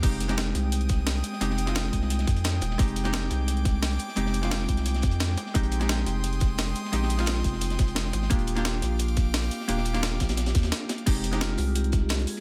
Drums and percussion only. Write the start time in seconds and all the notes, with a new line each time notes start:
0.03 kick, closed hi-hat, crash
0.13 closed hi-hat
0.20 closed hi-hat
0.29 snare, closed hi-hat
0.38 snare, closed hi-hat
0.55 snare, closed hi-hat
0.72 closed hi-hat
0.81 closed hi-hat
0.89 kick, snare, closed hi-hat
1.07 snare, closed hi-hat
1.16 closed hi-hat
1.23 closed hi-hat
1.33 snare
1.41 closed hi-hat
1.50 snare
1.58 closed hi-hat
1.67 snare, closed hi-hat
1.75 snare, closed hi-hat
1.93 kick, closed hi-hat
2.01 snare
2.10 closed hi-hat
2.19 snare, closed hi-hat
2.27 kick, snare, closed hi-hat
2.36 closed hi-hat
2.44 snare, closed hi-hat
2.54 snare
2.61 snare, closed hi-hat
2.70 snare
2.79 kick, closed hi-hat
2.88 closed hi-hat
2.96 closed hi-hat
3.05 snare, closed hi-hat
3.13 snare, closed hi-hat
3.30 snare, closed hi-hat
3.48 closed hi-hat
3.57 closed hi-hat
3.64 kick, snare, closed hi-hat
3.82 snare, closed hi-hat
3.91 closed hi-hat
3.99 closed hi-hat
4.08 snare
4.16 closed hi-hat
4.26 snare
4.34 closed hi-hat
4.43 snare, closed hi-hat
4.51 snare, closed hi-hat
4.68 kick, closed hi-hat
4.77 snare, closed hi-hat
4.86 closed hi-hat
4.94 snare, closed hi-hat
5.02 kick, snare, closed hi-hat
5.11 closed hi-hat
5.20 snare, closed hi-hat
5.29 snare
5.37 snare, closed hi-hat
5.46 snare
5.55 kick, closed hi-hat
5.63 closed hi-hat
5.72 closed hi-hat
5.81 snare, closed hi-hat
5.89 snare, closed hi-hat
6.06 snare, closed hi-hat
6.24 closed hi-hat
6.33 closed hi-hat
6.40 kick, snare, closed hi-hat
6.58 snare, closed hi-hat
6.66 closed hi-hat
6.75 closed hi-hat
6.85 snare
6.93 closed hi-hat
7.03 snare
7.10 closed hi-hat
7.19 snare, closed hi-hat
7.26 snare, closed hi-hat
7.44 kick, closed hi-hat
7.52 snare
7.61 closed hi-hat
7.70 snare, closed hi-hat
7.79 kick, snare, closed hi-hat
7.88 closed hi-hat
7.95 snare, closed hi-hat
8.05 snare
8.13 snare, closed hi-hat
8.22 snare
8.30 kick, closed hi-hat
8.39 closed hi-hat
8.47 closed hi-hat
8.57 snare, closed hi-hat
8.65 snare, closed hi-hat
8.82 snare, closed hi-hat
8.99 closed hi-hat
9.08 closed hi-hat
9.17 kick, snare, closed hi-hat
9.34 snare, closed hi-hat
9.43 closed hi-hat
9.51 closed hi-hat
9.60 snare
9.69 closed hi-hat
9.78 snare
9.85 closed hi-hat
9.94 snare, closed hi-hat
10.03 snare, closed hi-hat
10.20 kick, snare, closed hi-hat
10.29 snare, closed hi-hat
10.37 snare, closed hi-hat
10.46 snare, closed hi-hat
10.55 kick, snare, closed hi-hat
10.63 snare, closed hi-hat
10.72 snare, closed hi-hat
10.89 snare, closed hi-hat
10.98 closed hi-hat
11.07 kick, closed hi-hat, crash
11.15 closed hi-hat
11.24 closed hi-hat
11.32 snare, closed hi-hat
11.41 snare, closed hi-hat
11.58 snare, closed hi-hat, open hi-hat
11.75 closed hi-hat
11.84 closed hi-hat
11.92 kick, snare, closed hi-hat
12.09 snare, closed hi-hat
12.19 closed hi-hat
12.27 closed hi-hat, open hi-hat
12.36 snare